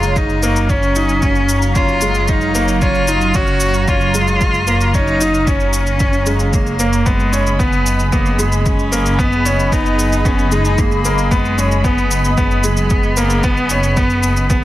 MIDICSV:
0, 0, Header, 1, 6, 480
1, 0, Start_track
1, 0, Key_signature, 6, "major"
1, 0, Tempo, 530973
1, 631, Time_signature, 4, 2, 24, 8
1, 13235, End_track
2, 0, Start_track
2, 0, Title_t, "Analog synth pad"
2, 0, Program_c, 0, 89
2, 0, Note_on_c, 0, 54, 72
2, 0, Note_on_c, 0, 73, 67
2, 0, Note_on_c, 0, 77, 65
2, 0, Note_on_c, 0, 82, 81
2, 6357, Note_off_c, 0, 73, 0
2, 6357, Note_off_c, 0, 77, 0
2, 6358, Note_off_c, 0, 54, 0
2, 6358, Note_off_c, 0, 82, 0
2, 6381, Note_on_c, 0, 68, 76
2, 6382, Note_on_c, 0, 75, 63
2, 6382, Note_on_c, 0, 83, 78
2, 13235, Note_off_c, 0, 68, 0
2, 13235, Note_off_c, 0, 75, 0
2, 13235, Note_off_c, 0, 83, 0
2, 13235, End_track
3, 0, Start_track
3, 0, Title_t, "Cello"
3, 0, Program_c, 1, 42
3, 0, Note_on_c, 1, 65, 98
3, 149, Note_on_c, 1, 63, 97
3, 163, Note_off_c, 1, 65, 0
3, 642, Note_on_c, 1, 61, 113
3, 655, Note_off_c, 1, 63, 0
3, 1590, Note_on_c, 1, 65, 100
3, 1604, Note_off_c, 1, 61, 0
3, 2068, Note_on_c, 1, 63, 98
3, 2081, Note_off_c, 1, 65, 0
3, 2542, Note_off_c, 1, 63, 0
3, 2548, Note_on_c, 1, 65, 105
3, 3029, Note_on_c, 1, 66, 106
3, 3042, Note_off_c, 1, 65, 0
3, 3510, Note_on_c, 1, 65, 104
3, 3524, Note_off_c, 1, 66, 0
3, 4462, Note_on_c, 1, 63, 110
3, 4475, Note_off_c, 1, 65, 0
3, 4941, Note_on_c, 1, 61, 99
3, 4955, Note_off_c, 1, 63, 0
3, 5909, Note_on_c, 1, 58, 90
3, 5922, Note_off_c, 1, 61, 0
3, 6383, Note_on_c, 1, 56, 95
3, 6396, Note_off_c, 1, 58, 0
3, 6858, Note_on_c, 1, 59, 95
3, 6871, Note_off_c, 1, 56, 0
3, 7339, Note_off_c, 1, 59, 0
3, 7345, Note_on_c, 1, 58, 91
3, 7576, Note_on_c, 1, 59, 80
3, 7589, Note_off_c, 1, 58, 0
3, 7827, Note_on_c, 1, 61, 88
3, 7840, Note_off_c, 1, 59, 0
3, 8313, Note_on_c, 1, 59, 101
3, 8326, Note_off_c, 1, 61, 0
3, 8793, Note_on_c, 1, 63, 97
3, 8807, Note_off_c, 1, 59, 0
3, 9271, Note_on_c, 1, 61, 90
3, 9284, Note_off_c, 1, 63, 0
3, 9512, Note_on_c, 1, 63, 89
3, 9526, Note_off_c, 1, 61, 0
3, 9757, Note_on_c, 1, 58, 90
3, 9771, Note_off_c, 1, 63, 0
3, 10228, Note_on_c, 1, 56, 97
3, 10241, Note_off_c, 1, 58, 0
3, 10711, Note_on_c, 1, 59, 90
3, 10725, Note_off_c, 1, 56, 0
3, 11187, Note_off_c, 1, 59, 0
3, 11192, Note_on_c, 1, 59, 94
3, 13235, Note_off_c, 1, 59, 0
3, 13235, End_track
4, 0, Start_track
4, 0, Title_t, "Grand piano"
4, 0, Program_c, 2, 0
4, 0, Note_on_c, 2, 56, 70
4, 330, Note_off_c, 2, 56, 0
4, 388, Note_on_c, 2, 58, 73
4, 600, Note_off_c, 2, 58, 0
4, 630, Note_on_c, 2, 61, 87
4, 841, Note_off_c, 2, 61, 0
4, 868, Note_on_c, 2, 63, 70
4, 1080, Note_off_c, 2, 63, 0
4, 1103, Note_on_c, 2, 61, 74
4, 1528, Note_off_c, 2, 61, 0
4, 1588, Note_on_c, 2, 61, 75
4, 1800, Note_off_c, 2, 61, 0
4, 1826, Note_on_c, 2, 56, 71
4, 2250, Note_off_c, 2, 56, 0
4, 2304, Note_on_c, 2, 58, 71
4, 2518, Note_off_c, 2, 58, 0
4, 2546, Note_on_c, 2, 61, 88
4, 2759, Note_off_c, 2, 61, 0
4, 2786, Note_on_c, 2, 63, 74
4, 2999, Note_off_c, 2, 63, 0
4, 3026, Note_on_c, 2, 61, 80
4, 3450, Note_off_c, 2, 61, 0
4, 3503, Note_on_c, 2, 61, 76
4, 3718, Note_off_c, 2, 61, 0
4, 3746, Note_on_c, 2, 56, 72
4, 4170, Note_off_c, 2, 56, 0
4, 4226, Note_on_c, 2, 58, 69
4, 4439, Note_off_c, 2, 58, 0
4, 4471, Note_on_c, 2, 61, 89
4, 4682, Note_off_c, 2, 61, 0
4, 4706, Note_on_c, 2, 63, 71
4, 4919, Note_off_c, 2, 63, 0
4, 4946, Note_on_c, 2, 61, 78
4, 5370, Note_off_c, 2, 61, 0
4, 5425, Note_on_c, 2, 61, 71
4, 5639, Note_off_c, 2, 61, 0
4, 5662, Note_on_c, 2, 56, 68
4, 6088, Note_off_c, 2, 56, 0
4, 6144, Note_on_c, 2, 58, 73
4, 6358, Note_off_c, 2, 58, 0
4, 6382, Note_on_c, 2, 59, 84
4, 6597, Note_off_c, 2, 59, 0
4, 6623, Note_on_c, 2, 61, 70
4, 6838, Note_off_c, 2, 61, 0
4, 6863, Note_on_c, 2, 59, 77
4, 7288, Note_off_c, 2, 59, 0
4, 7343, Note_on_c, 2, 59, 73
4, 7557, Note_off_c, 2, 59, 0
4, 7584, Note_on_c, 2, 56, 70
4, 8009, Note_off_c, 2, 56, 0
4, 8064, Note_on_c, 2, 58, 71
4, 8278, Note_off_c, 2, 58, 0
4, 8304, Note_on_c, 2, 59, 90
4, 8518, Note_off_c, 2, 59, 0
4, 8546, Note_on_c, 2, 61, 76
4, 8759, Note_off_c, 2, 61, 0
4, 8787, Note_on_c, 2, 59, 77
4, 9211, Note_off_c, 2, 59, 0
4, 9265, Note_on_c, 2, 59, 74
4, 9479, Note_off_c, 2, 59, 0
4, 9509, Note_on_c, 2, 56, 75
4, 9932, Note_off_c, 2, 56, 0
4, 9991, Note_on_c, 2, 58, 70
4, 10202, Note_off_c, 2, 58, 0
4, 10226, Note_on_c, 2, 59, 90
4, 10439, Note_off_c, 2, 59, 0
4, 10468, Note_on_c, 2, 61, 73
4, 10680, Note_off_c, 2, 61, 0
4, 10705, Note_on_c, 2, 59, 75
4, 11129, Note_off_c, 2, 59, 0
4, 11187, Note_on_c, 2, 59, 83
4, 11400, Note_off_c, 2, 59, 0
4, 11427, Note_on_c, 2, 56, 72
4, 11851, Note_off_c, 2, 56, 0
4, 11905, Note_on_c, 2, 58, 71
4, 12119, Note_off_c, 2, 58, 0
4, 12147, Note_on_c, 2, 59, 92
4, 12359, Note_off_c, 2, 59, 0
4, 12391, Note_on_c, 2, 61, 71
4, 12602, Note_off_c, 2, 61, 0
4, 12628, Note_on_c, 2, 59, 81
4, 13051, Note_off_c, 2, 59, 0
4, 13105, Note_on_c, 2, 59, 82
4, 13235, Note_off_c, 2, 59, 0
4, 13235, End_track
5, 0, Start_track
5, 0, Title_t, "Detuned saw bass"
5, 0, Program_c, 3, 39
5, 0, Note_on_c, 3, 30, 85
5, 6366, Note_off_c, 3, 30, 0
5, 6390, Note_on_c, 3, 30, 91
5, 13235, Note_off_c, 3, 30, 0
5, 13235, End_track
6, 0, Start_track
6, 0, Title_t, "Drums"
6, 27, Note_on_c, 9, 82, 27
6, 117, Note_off_c, 9, 82, 0
6, 146, Note_on_c, 9, 82, 39
6, 148, Note_on_c, 9, 36, 91
6, 236, Note_off_c, 9, 82, 0
6, 238, Note_off_c, 9, 36, 0
6, 265, Note_on_c, 9, 82, 19
6, 356, Note_off_c, 9, 82, 0
6, 386, Note_on_c, 9, 82, 66
6, 477, Note_off_c, 9, 82, 0
6, 507, Note_on_c, 9, 82, 30
6, 597, Note_off_c, 9, 82, 0
6, 627, Note_on_c, 9, 82, 36
6, 629, Note_on_c, 9, 36, 92
6, 717, Note_off_c, 9, 82, 0
6, 719, Note_off_c, 9, 36, 0
6, 749, Note_on_c, 9, 82, 19
6, 839, Note_off_c, 9, 82, 0
6, 864, Note_on_c, 9, 82, 67
6, 955, Note_off_c, 9, 82, 0
6, 984, Note_on_c, 9, 82, 26
6, 1074, Note_off_c, 9, 82, 0
6, 1105, Note_on_c, 9, 82, 40
6, 1108, Note_on_c, 9, 36, 104
6, 1195, Note_off_c, 9, 82, 0
6, 1199, Note_off_c, 9, 36, 0
6, 1224, Note_on_c, 9, 82, 19
6, 1315, Note_off_c, 9, 82, 0
6, 1345, Note_on_c, 9, 82, 63
6, 1436, Note_off_c, 9, 82, 0
6, 1466, Note_on_c, 9, 82, 31
6, 1556, Note_off_c, 9, 82, 0
6, 1585, Note_on_c, 9, 82, 39
6, 1588, Note_on_c, 9, 36, 101
6, 1675, Note_off_c, 9, 82, 0
6, 1678, Note_off_c, 9, 36, 0
6, 1703, Note_on_c, 9, 82, 20
6, 1793, Note_off_c, 9, 82, 0
6, 1817, Note_on_c, 9, 82, 67
6, 1908, Note_off_c, 9, 82, 0
6, 1939, Note_on_c, 9, 82, 27
6, 2030, Note_off_c, 9, 82, 0
6, 2059, Note_on_c, 9, 82, 41
6, 2069, Note_on_c, 9, 36, 89
6, 2150, Note_off_c, 9, 82, 0
6, 2159, Note_off_c, 9, 36, 0
6, 2181, Note_on_c, 9, 82, 18
6, 2271, Note_off_c, 9, 82, 0
6, 2304, Note_on_c, 9, 82, 69
6, 2395, Note_off_c, 9, 82, 0
6, 2425, Note_on_c, 9, 82, 28
6, 2515, Note_off_c, 9, 82, 0
6, 2545, Note_on_c, 9, 82, 37
6, 2549, Note_on_c, 9, 36, 92
6, 2635, Note_off_c, 9, 82, 0
6, 2639, Note_off_c, 9, 36, 0
6, 2663, Note_on_c, 9, 82, 18
6, 2754, Note_off_c, 9, 82, 0
6, 2781, Note_on_c, 9, 82, 66
6, 2872, Note_off_c, 9, 82, 0
6, 2904, Note_on_c, 9, 82, 26
6, 2994, Note_off_c, 9, 82, 0
6, 3021, Note_on_c, 9, 82, 42
6, 3029, Note_on_c, 9, 36, 93
6, 3111, Note_off_c, 9, 82, 0
6, 3120, Note_off_c, 9, 36, 0
6, 3138, Note_on_c, 9, 82, 20
6, 3228, Note_off_c, 9, 82, 0
6, 3256, Note_on_c, 9, 82, 70
6, 3346, Note_off_c, 9, 82, 0
6, 3382, Note_on_c, 9, 82, 28
6, 3472, Note_off_c, 9, 82, 0
6, 3506, Note_on_c, 9, 82, 41
6, 3509, Note_on_c, 9, 36, 102
6, 3597, Note_off_c, 9, 82, 0
6, 3599, Note_off_c, 9, 36, 0
6, 3623, Note_on_c, 9, 82, 21
6, 3713, Note_off_c, 9, 82, 0
6, 3745, Note_on_c, 9, 82, 67
6, 3836, Note_off_c, 9, 82, 0
6, 3865, Note_on_c, 9, 82, 29
6, 3956, Note_off_c, 9, 82, 0
6, 3986, Note_on_c, 9, 82, 39
6, 3989, Note_on_c, 9, 36, 97
6, 4077, Note_off_c, 9, 82, 0
6, 4080, Note_off_c, 9, 36, 0
6, 4105, Note_on_c, 9, 82, 20
6, 4195, Note_off_c, 9, 82, 0
6, 4225, Note_on_c, 9, 82, 68
6, 4315, Note_off_c, 9, 82, 0
6, 4346, Note_on_c, 9, 82, 33
6, 4437, Note_off_c, 9, 82, 0
6, 4469, Note_on_c, 9, 82, 38
6, 4470, Note_on_c, 9, 36, 94
6, 4560, Note_off_c, 9, 82, 0
6, 4561, Note_off_c, 9, 36, 0
6, 4589, Note_on_c, 9, 82, 19
6, 4679, Note_off_c, 9, 82, 0
6, 4708, Note_on_c, 9, 82, 67
6, 4799, Note_off_c, 9, 82, 0
6, 4830, Note_on_c, 9, 82, 30
6, 4921, Note_off_c, 9, 82, 0
6, 4949, Note_on_c, 9, 36, 98
6, 4949, Note_on_c, 9, 82, 39
6, 5039, Note_off_c, 9, 82, 0
6, 5040, Note_off_c, 9, 36, 0
6, 5064, Note_on_c, 9, 82, 19
6, 5155, Note_off_c, 9, 82, 0
6, 5181, Note_on_c, 9, 82, 67
6, 5272, Note_off_c, 9, 82, 0
6, 5303, Note_on_c, 9, 82, 30
6, 5394, Note_off_c, 9, 82, 0
6, 5420, Note_on_c, 9, 82, 40
6, 5428, Note_on_c, 9, 36, 98
6, 5511, Note_off_c, 9, 82, 0
6, 5519, Note_off_c, 9, 36, 0
6, 5543, Note_on_c, 9, 82, 21
6, 5633, Note_off_c, 9, 82, 0
6, 5662, Note_on_c, 9, 82, 68
6, 5752, Note_off_c, 9, 82, 0
6, 5781, Note_on_c, 9, 82, 30
6, 5871, Note_off_c, 9, 82, 0
6, 5906, Note_on_c, 9, 82, 41
6, 5909, Note_on_c, 9, 36, 91
6, 5996, Note_off_c, 9, 82, 0
6, 5999, Note_off_c, 9, 36, 0
6, 6027, Note_on_c, 9, 82, 19
6, 6118, Note_off_c, 9, 82, 0
6, 6142, Note_on_c, 9, 82, 70
6, 6232, Note_off_c, 9, 82, 0
6, 6265, Note_on_c, 9, 82, 30
6, 6355, Note_off_c, 9, 82, 0
6, 6385, Note_on_c, 9, 82, 36
6, 6389, Note_on_c, 9, 36, 84
6, 6475, Note_off_c, 9, 82, 0
6, 6479, Note_off_c, 9, 36, 0
6, 6505, Note_on_c, 9, 82, 19
6, 6596, Note_off_c, 9, 82, 0
6, 6628, Note_on_c, 9, 82, 66
6, 6718, Note_off_c, 9, 82, 0
6, 6750, Note_on_c, 9, 82, 25
6, 6840, Note_off_c, 9, 82, 0
6, 6869, Note_on_c, 9, 36, 98
6, 6869, Note_on_c, 9, 82, 38
6, 6959, Note_off_c, 9, 36, 0
6, 6959, Note_off_c, 9, 82, 0
6, 6985, Note_on_c, 9, 82, 19
6, 7075, Note_off_c, 9, 82, 0
6, 7108, Note_on_c, 9, 82, 63
6, 7198, Note_off_c, 9, 82, 0
6, 7226, Note_on_c, 9, 82, 28
6, 7317, Note_off_c, 9, 82, 0
6, 7345, Note_on_c, 9, 82, 40
6, 7349, Note_on_c, 9, 36, 98
6, 7435, Note_off_c, 9, 82, 0
6, 7439, Note_off_c, 9, 36, 0
6, 7466, Note_on_c, 9, 82, 21
6, 7556, Note_off_c, 9, 82, 0
6, 7585, Note_on_c, 9, 82, 66
6, 7676, Note_off_c, 9, 82, 0
6, 7704, Note_on_c, 9, 82, 28
6, 7795, Note_off_c, 9, 82, 0
6, 7827, Note_on_c, 9, 82, 37
6, 7829, Note_on_c, 9, 36, 96
6, 7917, Note_off_c, 9, 82, 0
6, 7919, Note_off_c, 9, 36, 0
6, 7949, Note_on_c, 9, 82, 20
6, 8039, Note_off_c, 9, 82, 0
6, 8069, Note_on_c, 9, 82, 66
6, 8159, Note_off_c, 9, 82, 0
6, 8190, Note_on_c, 9, 82, 29
6, 8280, Note_off_c, 9, 82, 0
6, 8309, Note_on_c, 9, 36, 92
6, 8310, Note_on_c, 9, 82, 34
6, 8399, Note_off_c, 9, 36, 0
6, 8400, Note_off_c, 9, 82, 0
6, 8429, Note_on_c, 9, 82, 19
6, 8519, Note_off_c, 9, 82, 0
6, 8549, Note_on_c, 9, 82, 62
6, 8640, Note_off_c, 9, 82, 0
6, 8674, Note_on_c, 9, 82, 25
6, 8764, Note_off_c, 9, 82, 0
6, 8789, Note_on_c, 9, 36, 89
6, 8792, Note_on_c, 9, 82, 38
6, 8879, Note_off_c, 9, 36, 0
6, 8882, Note_off_c, 9, 82, 0
6, 8913, Note_on_c, 9, 82, 20
6, 9003, Note_off_c, 9, 82, 0
6, 9032, Note_on_c, 9, 82, 60
6, 9123, Note_off_c, 9, 82, 0
6, 9153, Note_on_c, 9, 82, 28
6, 9244, Note_off_c, 9, 82, 0
6, 9269, Note_on_c, 9, 36, 96
6, 9269, Note_on_c, 9, 82, 39
6, 9360, Note_off_c, 9, 36, 0
6, 9360, Note_off_c, 9, 82, 0
6, 9391, Note_on_c, 9, 82, 19
6, 9481, Note_off_c, 9, 82, 0
6, 9508, Note_on_c, 9, 82, 60
6, 9598, Note_off_c, 9, 82, 0
6, 9627, Note_on_c, 9, 82, 27
6, 9717, Note_off_c, 9, 82, 0
6, 9746, Note_on_c, 9, 82, 40
6, 9749, Note_on_c, 9, 36, 96
6, 9837, Note_off_c, 9, 82, 0
6, 9839, Note_off_c, 9, 36, 0
6, 9868, Note_on_c, 9, 82, 18
6, 9958, Note_off_c, 9, 82, 0
6, 9988, Note_on_c, 9, 82, 63
6, 10078, Note_off_c, 9, 82, 0
6, 10108, Note_on_c, 9, 82, 28
6, 10199, Note_off_c, 9, 82, 0
6, 10229, Note_on_c, 9, 36, 93
6, 10229, Note_on_c, 9, 82, 35
6, 10319, Note_off_c, 9, 36, 0
6, 10320, Note_off_c, 9, 82, 0
6, 10352, Note_on_c, 9, 82, 20
6, 10442, Note_off_c, 9, 82, 0
6, 10472, Note_on_c, 9, 82, 61
6, 10563, Note_off_c, 9, 82, 0
6, 10591, Note_on_c, 9, 82, 25
6, 10681, Note_off_c, 9, 82, 0
6, 10707, Note_on_c, 9, 82, 37
6, 10708, Note_on_c, 9, 36, 100
6, 10798, Note_off_c, 9, 82, 0
6, 10799, Note_off_c, 9, 36, 0
6, 10831, Note_on_c, 9, 82, 19
6, 10922, Note_off_c, 9, 82, 0
6, 10947, Note_on_c, 9, 82, 63
6, 11037, Note_off_c, 9, 82, 0
6, 11071, Note_on_c, 9, 82, 28
6, 11161, Note_off_c, 9, 82, 0
6, 11187, Note_on_c, 9, 82, 37
6, 11189, Note_on_c, 9, 36, 89
6, 11277, Note_off_c, 9, 82, 0
6, 11280, Note_off_c, 9, 36, 0
6, 11308, Note_on_c, 9, 82, 19
6, 11399, Note_off_c, 9, 82, 0
6, 11423, Note_on_c, 9, 82, 61
6, 11513, Note_off_c, 9, 82, 0
6, 11543, Note_on_c, 9, 82, 28
6, 11634, Note_off_c, 9, 82, 0
6, 11661, Note_on_c, 9, 82, 38
6, 11669, Note_on_c, 9, 36, 96
6, 11751, Note_off_c, 9, 82, 0
6, 11760, Note_off_c, 9, 36, 0
6, 11781, Note_on_c, 9, 82, 18
6, 11871, Note_off_c, 9, 82, 0
6, 11903, Note_on_c, 9, 82, 68
6, 11993, Note_off_c, 9, 82, 0
6, 12023, Note_on_c, 9, 82, 28
6, 12113, Note_off_c, 9, 82, 0
6, 12144, Note_on_c, 9, 82, 38
6, 12150, Note_on_c, 9, 36, 97
6, 12234, Note_off_c, 9, 82, 0
6, 12241, Note_off_c, 9, 36, 0
6, 12268, Note_on_c, 9, 82, 19
6, 12358, Note_off_c, 9, 82, 0
6, 12381, Note_on_c, 9, 82, 68
6, 12472, Note_off_c, 9, 82, 0
6, 12506, Note_on_c, 9, 82, 26
6, 12597, Note_off_c, 9, 82, 0
6, 12627, Note_on_c, 9, 82, 37
6, 12631, Note_on_c, 9, 36, 93
6, 12717, Note_off_c, 9, 82, 0
6, 12722, Note_off_c, 9, 36, 0
6, 12747, Note_on_c, 9, 82, 19
6, 12838, Note_off_c, 9, 82, 0
6, 12865, Note_on_c, 9, 82, 65
6, 12955, Note_off_c, 9, 82, 0
6, 12987, Note_on_c, 9, 82, 28
6, 13078, Note_off_c, 9, 82, 0
6, 13108, Note_on_c, 9, 82, 39
6, 13111, Note_on_c, 9, 36, 101
6, 13198, Note_off_c, 9, 82, 0
6, 13202, Note_off_c, 9, 36, 0
6, 13235, End_track
0, 0, End_of_file